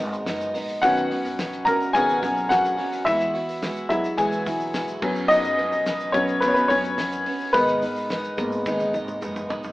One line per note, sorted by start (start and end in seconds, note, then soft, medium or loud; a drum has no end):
0.00 0.25 G#1 loud
0.00 0.84 G#3 medium
0.00 0.24 G#3 medium
0.00 0.84 A#3 medium
0.00 0.83 B3 medium
0.00 0.26 B3 medium
0.00 0.27 D#4 medium
0.00 0.84 F#4 medium
0.00 0.26 A#4 medium
0.00 0.82 F#5 loud
0.12 hi-hat pedal medium
0.12 open hi-hat medium
0.12 shaker medium
0.26 0.53 F#1 loud
0.26 0.54 G#3 medium
0.26 0.55 B3 medium
0.26 0.54 D#4 medium
0.26 0.53 A#4 medium
0.26 snare loud
0.26 hi-hat pedal medium
0.26 open hi-hat medium
0.26 shaker medium
0.41 hi-hat pedal medium
0.41 open hi-hat soft
0.41 shaker medium
0.54 0.81 A#1 medium
0.54 0.82 G#3 soft
0.54 0.82 B3 medium
0.54 0.83 D#4 medium
0.54 0.82 A#4 medium
0.54 hi-hat pedal medium
0.54 open hi-hat medium
0.54 shaker medium
0.69 hi-hat pedal medium
0.69 open hi-hat soft
0.69 shaker soft
0.82 1.22 B1 loud
0.82 1.10 B2 medium
0.82 1.93 D#3 medium
0.82 1.11 D#3 medium
0.82 1.11 F#3 medium
0.82 1.93 B3 medium
0.82 1.11 B3 loud
0.82 1.10 C#4 medium
0.82 1.94 C#4 medium
0.82 1.63 F#4 medium
0.82 1.09 F#4 loud
0.82 1.69 F#5 loud
0.82 kick loud
0.82 hi-hat pedal medium
0.82 open hi-hat loud
0.82 shaker medium
0.97 hi-hat pedal medium
0.97 open hi-hat soft
0.97 shaker medium
1.10 1.37 F#3 medium
1.10 1.38 B3 soft
1.10 1.39 C#4 medium
1.10 1.38 F#4 medium
1.10 hi-hat pedal medium
1.10 open hi-hat medium
1.25 1.64 B1 medium
1.25 hi-hat pedal medium
1.25 open hi-hat medium
1.25 shaker soft
1.38 1.66 F#3 medium
1.38 1.67 B3 medium
1.38 1.66 C#4 medium
1.38 1.65 F#4 medium
1.38 snare loud
1.38 hi-hat pedal medium
1.38 open hi-hat loud
1.38 shaker medium
1.53 hi-hat pedal medium
1.53 shaker soft
1.65 2.19 C#2 medium
1.65 1.94 B3 soft
1.65 1.95 C#4 medium
1.65 1.94 F#4 medium
1.65 1.93 A#4 medium
1.65 1.95 A#5 loud
1.65 kick loud
1.65 hi-hat pedal medium
1.65 open hi-hat medium
1.65 shaker medium
1.69 1.94 F#3 medium
1.80 open hi-hat soft
1.80 shaker medium
1.93 2.23 B2 medium
1.93 2.20 D#3 medium
1.93 2.23 D#3 medium
1.93 2.23 F#3 loud
1.93 2.20 B3 soft
1.93 2.23 B3 loud
1.93 2.20 C#4 medium
1.93 2.22 C#4 loud
1.93 2.20 F#4 loud
1.93 2.47 G#4 medium
1.93 2.46 G#5 loud
1.93 kick medium
1.93 hi-hat pedal medium
1.93 open hi-hat medium
1.93 shaker medium
2.09 hi-hat pedal medium
2.09 shaker medium
2.22 2.75 B1 loud
2.22 2.49 F#3 soft
2.22 2.50 B3 medium
2.22 2.51 C#4 medium
2.22 2.50 F#4 medium
2.22 kick medium
2.22 hi-hat pedal medium
2.22 open hi-hat medium
2.22 shaker medium
2.36 open hi-hat soft
2.36 shaker medium
2.49 2.78 F#3 medium
2.49 2.78 B3 medium
2.49 2.77 C#4 medium
2.49 3.03 F#4 medium
2.49 2.76 F#4 medium
2.49 3.08 F#5 medium
2.49 snare loud
2.49 hi-hat pedal medium
2.49 open hi-hat medium
2.49 shaker medium
2.65 hi-hat pedal medium
2.65 open hi-hat soft
2.65 shaker medium
2.77 3.06 F#3 soft
2.77 3.06 B3 medium
2.77 3.07 C#4 medium
2.77 3.06 F#4 medium
2.77 hi-hat pedal medium
2.77 open hi-hat medium
2.92 hi-hat pedal medium
2.92 open hi-hat soft
2.92 shaker soft
3.05 3.87 E2 loud
3.05 3.34 E3 medium
3.05 3.35 G#3 medium
3.05 3.35 B3 medium
3.05 3.87 E4 medium
3.05 3.34 E4 loud
3.05 3.33 F#4 loud
3.05 3.88 E5 loud
3.05 kick loud
3.05 hi-hat pedal medium
3.05 open hi-hat loud
3.05 shaker medium
3.20 snare soft
3.20 hi-hat pedal medium
3.20 open hi-hat soft
3.20 shaker medium
3.34 3.62 B3 soft
3.34 3.62 E4 soft
3.34 3.62 F#4 medium
3.34 hi-hat pedal medium
3.34 open hi-hat medium
3.49 hi-hat pedal medium
3.49 open hi-hat medium
3.49 shaker medium
3.62 3.90 G#3 medium
3.62 3.91 B3 medium
3.62 3.90 E4 medium
3.62 3.89 F#4 medium
3.62 snare loud
3.62 hi-hat pedal medium
3.62 open hi-hat loud
3.62 shaker medium
3.76 hi-hat pedal medium
3.76 open hi-hat soft
3.76 shaker soft
3.89 4.43 E2 medium
3.89 4.27 F#3 medium
3.89 4.28 G#3 medium
3.89 4.18 B3 medium
3.89 4.17 E4 medium
3.89 4.19 E4 medium
3.89 4.18 F#4 medium
3.89 4.19 E5 medium
3.89 kick medium
3.89 hi-hat pedal medium
3.89 open hi-hat medium
3.89 shaker medium
4.04 hi-hat pedal medium
4.04 open hi-hat soft
4.04 shaker medium
4.18 4.46 E3 medium
4.18 4.46 G#3 medium
4.18 4.47 B3 medium
4.18 4.46 E4 loud
4.18 4.45 F#4 loud
4.18 4.99 G#4 medium
4.18 4.98 G#5 medium
4.18 kick loud
4.18 hi-hat pedal medium
4.18 open hi-hat medium
4.18 shaker medium
4.32 hi-hat pedal medium
4.32 shaker medium
4.46 4.73 B1 loud
4.46 4.73 B3 medium
4.46 4.75 E4 medium
4.46 4.74 F#4 medium
4.46 kick medium
4.46 hi-hat pedal medium
4.46 open hi-hat medium
4.46 shaker medium
4.60 open hi-hat medium
4.60 shaker medium
4.73 5.01 B1 medium
4.73 5.02 G#3 medium
4.73 5.02 B3 medium
4.73 5.03 E4 medium
4.73 5.01 F#4 medium
4.73 snare loud
4.73 hi-hat pedal medium
4.73 open hi-hat medium
4.73 shaker medium
4.88 hi-hat pedal medium
4.88 shaker medium
5.02 5.68 F#2 loud
5.02 5.82 F#3 medium
5.02 5.29 F#3 medium
5.02 5.83 B3 medium
5.02 5.30 B3 medium
5.02 5.30 C#4 medium
5.02 5.83 C#4 medium
5.02 5.30 B4 medium
5.02 kick loud
5.02 crash medium
5.15 open hi-hat soft
5.15 shaker soft
5.28 5.58 F#2 medium
5.28 5.58 C#3 medium
5.28 5.58 F#3 medium
5.28 5.59 B3 medium
5.28 5.58 C#4 loud
5.28 6.11 D#4 medium
5.28 5.57 B4 loud
5.28 6.09 D#5 loud
5.28 hi-hat pedal medium
5.28 open hi-hat loud
5.28 shaker medium
5.44 hi-hat pedal medium
5.44 shaker medium
5.58 5.84 F#3 medium
5.58 5.86 B3 soft
5.58 5.87 C#4 medium
5.58 5.86 B4 medium
5.58 hi-hat pedal medium
5.58 open hi-hat medium
5.72 6.11 B1 medium
5.72 open hi-hat medium
5.72 shaker soft
5.86 6.14 F#3 medium
5.86 6.15 B3 medium
5.86 6.13 C#4 medium
5.86 6.12 B4 medium
5.86 snare loud
5.86 hi-hat pedal medium
5.86 open hi-hat medium
5.86 shaker medium
6.00 hi-hat pedal medium
6.00 open hi-hat soft
6.00 shaker medium
6.12 6.66 B1 medium
6.12 6.39 F#3 medium
6.12 6.39 B3 soft
6.12 6.42 B3 medium
6.12 6.41 C#4 medium
6.12 6.43 C#4 medium
6.12 6.42 B4 medium
6.12 6.42 C#5 loud
6.12 kick loud
6.12 hi-hat pedal medium
6.12 open hi-hat medium
6.12 shaker medium
6.17 6.42 F#3 medium
6.28 hi-hat pedal medium
6.28 open hi-hat medium
6.28 shaker medium
6.40 6.70 F#2 loud
6.40 6.70 C#3 loud
6.40 6.71 F#3 loud
6.40 6.49 B3 medium
6.40 6.71 B3 loud
6.40 6.69 C#4 loud
6.40 6.48 B4 medium
6.40 6.68 B4 loud
6.40 kick loud
6.40 hi-hat pedal medium
6.40 open hi-hat medium
6.40 shaker medium
6.48 6.56 C#5 medium
6.54 6.70 B3 medium
6.54 6.68 B4 medium
6.54 hi-hat pedal medium
6.54 open hi-hat soft
6.54 shaker soft
6.68 7.22 F#2 loud
6.68 6.98 B3 medium
6.68 6.98 C#4 medium
6.68 7.23 C#4 medium
6.68 6.98 B4 medium
6.68 7.21 C#5 loud
6.68 kick medium
6.68 hi-hat pedal medium
6.68 open hi-hat medium
6.68 shaker medium
6.73 6.96 F#3 soft
6.84 hi-hat pedal medium
6.84 open hi-hat medium
6.84 shaker medium
6.98 7.26 F#3 medium
6.98 7.27 B3 medium
6.98 7.25 C#4 medium
6.98 7.24 B4 medium
6.98 snare loud
6.98 hi-hat pedal medium
6.98 open hi-hat medium
6.98 shaker medium
7.12 hi-hat pedal medium
7.12 open hi-hat soft
7.12 shaker medium
7.25 7.54 F#3 medium
7.25 7.53 B3 medium
7.25 7.54 C#4 medium
7.25 7.54 B4 medium
7.25 hi-hat pedal medium
7.25 open hi-hat medium
7.40 hi-hat pedal medium
7.40 open hi-hat soft
7.40 shaker soft
7.53 8.34 G#1 medium
7.53 7.82 G#2 medium
7.53 7.82 D#3 medium
7.53 8.36 G#3 medium
7.53 7.82 G#3 medium
7.53 7.82 B3 loud
7.53 8.36 B3 medium
7.53 7.81 D#4 medium
7.53 9.72 A#4 medium
7.53 7.80 A#4 medium
7.53 9.18 B4 loud
7.53 kick loud
7.53 hi-hat pedal medium
7.53 open hi-hat loud
7.53 shaker medium
7.68 hi-hat pedal medium
7.68 open hi-hat soft
7.68 shaker medium
7.81 8.08 G#3 soft
7.81 8.09 B3 medium
7.81 8.10 D#4 medium
7.81 8.10 A#4 medium
7.81 hi-hat pedal medium
7.81 open hi-hat medium
7.81 shaker medium
7.96 hi-hat pedal medium
7.96 open hi-hat soft
7.96 shaker soft
8.09 8.38 G#3 medium
8.09 8.38 B3 medium
8.09 8.37 D#4 medium
8.09 8.36 A#4 medium
8.09 snare loud
8.09 hi-hat pedal medium
8.09 open hi-hat loud
8.09 shaker medium
8.24 hi-hat pedal medium
8.24 shaker soft
8.37 8.90 G#1 loud
8.37 8.63 G#3 medium
8.37 8.65 G#3 medium
8.37 8.63 A#3 soft
8.37 8.63 B3 medium
8.37 8.66 B3 medium
8.37 8.66 D#4 medium
8.37 8.66 A#4 medium
8.37 kick loud
8.37 hi-hat pedal medium
8.37 open hi-hat medium
8.37 shaker medium
8.52 open hi-hat medium
8.52 shaker medium
8.65 8.94 G#2 medium
8.65 8.94 D#3 medium
8.65 8.94 G#3 medium
8.65 8.94 B3 medium
8.65 8.93 D#4 loud
8.65 8.92 A#4 medium
8.65 kick loud
8.65 high tom medium
8.65 shaker medium
8.80 high tom medium
8.80 shaker medium
8.93 9.20 G#1 medium
8.93 9.20 G#3 soft
8.93 9.21 B3 medium
8.93 9.22 D#4 medium
8.93 9.22 A#4 medium
8.93 mid tom medium
8.93 shaker medium
9.08 mid tom medium
9.08 shaker medium
9.21 9.48 F#1 loud
9.21 9.50 G#3 medium
9.21 9.50 B3 medium
9.21 9.49 D#4 medium
9.21 9.48 A#4 medium
9.21 mid tom medium
9.21 shaker medium
9.36 mid tom medium
9.36 shaker medium
9.49 9.72 A#1 medium
9.49 9.72 G#3 medium
9.49 9.72 B3 medium
9.49 9.72 D#4 medium
9.49 9.72 A#4 medium
9.49 floor tom loud
9.49 shaker soft
9.63 floor tom medium
9.63 shaker soft